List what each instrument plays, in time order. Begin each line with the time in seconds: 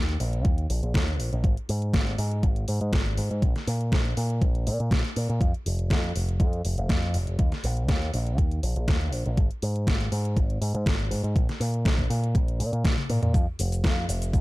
Already playing: picked electric bass D#2
0.09 closed hi-hat
0.20 picked electric bass A#1, open hi-hat
0.33 closed hi-hat
0.45 picked electric bass D#2, kick, closed hi-hat
0.58 closed hi-hat
0.70 picked electric bass A#1, open hi-hat
0.83 picked electric bass A#1, closed hi-hat
0.94 kick, snare, closed hi-hat
1.08 closed hi-hat
1.20 picked electric bass A#1, open hi-hat
1.33 picked electric bass A#1, closed hi-hat
1.44 picked electric bass G#1, kick, closed hi-hat
1.57 closed hi-hat
1.69 picked electric bass G#2, open hi-hat
1.82 closed hi-hat
1.94 picked electric bass G#1, kick, snare, closed hi-hat
2.07 closed hi-hat
2.18 picked electric bass G#2, open hi-hat
2.31 closed hi-hat
2.43 picked electric bass G#1, kick, closed hi-hat
2.56 closed hi-hat
2.68 picked electric bass G#2, open hi-hat
2.81 picked electric bass G#2, closed hi-hat
2.93 picked electric bass G#1, kick, snare, closed hi-hat
3.06 closed hi-hat
3.17 picked electric bass G#2, open hi-hat
3.31 picked electric bass G#2, closed hi-hat
3.42 picked electric bass A#1, kick, closed hi-hat
3.56 snare, closed hi-hat
3.67 picked electric bass A#2, open hi-hat
3.81 closed hi-hat
3.92 picked electric bass A#1, kick, snare, closed hi-hat
4.05 closed hi-hat
4.17 picked electric bass A#2, open hi-hat
4.30 closed hi-hat
4.42 picked electric bass A#1, kick, closed hi-hat
4.55 closed hi-hat
4.67 picked electric bass A#2, open hi-hat
4.80 picked electric bass A#2, closed hi-hat
4.91 picked electric bass A#1, kick, snare, closed hi-hat
5.05 closed hi-hat
5.16 picked electric bass A#2, open hi-hat
5.29 picked electric bass A#2, closed hi-hat
5.41 picked electric bass F2, kick, closed hi-hat
5.54 closed hi-hat
5.66 picked electric bass F1, open hi-hat
5.79 closed hi-hat
5.90 picked electric bass F2, kick, snare, closed hi-hat
6.04 closed hi-hat
6.15 picked electric bass F1, open hi-hat
6.29 closed hi-hat
6.40 picked electric bass F2, kick, closed hi-hat
6.53 closed hi-hat
6.65 picked electric bass F1, open hi-hat
6.78 picked electric bass F1, closed hi-hat
6.89 picked electric bass F2, kick, snare, closed hi-hat
7.02 closed hi-hat
7.14 picked electric bass F1, open hi-hat
7.27 picked electric bass F1, closed hi-hat
7.39 picked electric bass D#2, kick, closed hi-hat
7.52 snare, closed hi-hat
7.64 picked electric bass A#1, open hi-hat
7.77 closed hi-hat
7.89 picked electric bass D#2, kick, snare, closed hi-hat
8.02 closed hi-hat
8.14 picked electric bass A#1, open hi-hat
8.27 closed hi-hat
8.38 picked electric bass D#2, kick, closed hi-hat
8.51 closed hi-hat
8.63 picked electric bass A#1, open hi-hat
8.76 picked electric bass A#1, closed hi-hat
8.88 picked electric bass D#2, kick, snare, closed hi-hat
9.01 closed hi-hat
9.13 picked electric bass A#1, open hi-hat
9.26 picked electric bass A#1, closed hi-hat
9.37 picked electric bass G#1, kick, closed hi-hat
9.51 closed hi-hat
9.62 picked electric bass G#2, open hi-hat
9.76 closed hi-hat
9.87 picked electric bass G#1, kick, snare, closed hi-hat
10.00 closed hi-hat
10.12 picked electric bass G#2, open hi-hat
10.25 closed hi-hat
10.37 picked electric bass G#1, kick, closed hi-hat
10.50 closed hi-hat
10.61 picked electric bass G#2, open hi-hat
10.74 picked electric bass G#2, closed hi-hat
10.86 picked electric bass G#1, kick, snare, closed hi-hat
11.00 closed hi-hat
11.11 picked electric bass G#2, open hi-hat
11.24 picked electric bass G#2, closed hi-hat
11.36 picked electric bass A#1, kick, closed hi-hat
11.49 snare, closed hi-hat
11.60 picked electric bass A#2, open hi-hat
11.74 closed hi-hat
11.85 picked electric bass A#1, kick, snare, closed hi-hat
11.98 kick, closed hi-hat
12.10 picked electric bass A#2, open hi-hat
12.24 closed hi-hat
12.35 picked electric bass A#1, kick, closed hi-hat
12.48 closed hi-hat
12.60 picked electric bass A#2, open hi-hat
12.73 picked electric bass A#2, closed hi-hat
12.85 picked electric bass A#1, kick, snare, closed hi-hat
12.98 closed hi-hat, high tom
13.09 picked electric bass A#2, open hi-hat, mid tom
13.22 picked electric bass A#2, closed hi-hat, mid tom
13.34 picked electric bass F2, kick, closed hi-hat, cabasa
13.59 picked electric bass F1, open hi-hat, cabasa
13.72 closed hi-hat, cabasa
13.84 picked electric bass F2, kick, snare, closed hi-hat, cabasa
14.08 picked electric bass F1, open hi-hat, cabasa
14.22 closed hi-hat, cabasa
14.33 picked electric bass F2, kick, closed hi-hat, cabasa